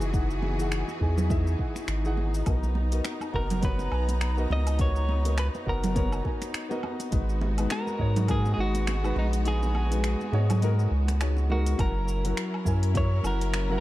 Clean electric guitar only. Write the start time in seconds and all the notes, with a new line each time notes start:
3.36 A#4
3.65 B4
4.53 D#5
4.81 C#5
5.39 B4
5.69 A#4
7.72 A#4
8.31 G#4
8.54 G#4
8.60 F#4
9.19 D#4
9.48 G#4
11.52 F#4
11.80 A#4
12.97 C#5
13.27 A#4